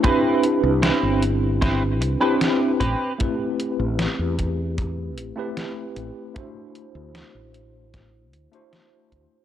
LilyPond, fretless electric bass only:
\new Staff \with { instrumentName = "Fretless electric bass" } { \clef bass \time 4/4 \key a \dorian \tempo 4 = 76 r8. c,16 r16 g,,4~ g,,16 c,16 r8. a,,16 r16 | r8. a,,16 r16 e,4~ e,16 a,,16 r8. a,,16 r16 | r8. d,16 r16 a,,4~ a,,16 d,16 r8. d,16 r16 | }